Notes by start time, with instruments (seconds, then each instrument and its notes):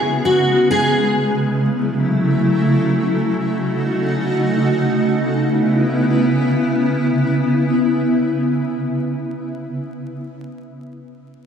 Already playing: ambient pad C#3 G#3 B3
0.25 steel-string acoustic guitar F#4
0.71 steel-string acoustic guitar G#4
1.39 ambient pad F#3 A3 E4
3.20 ambient pad A3 D#4 F#4
5.02 ambient pad C#3 B3 E4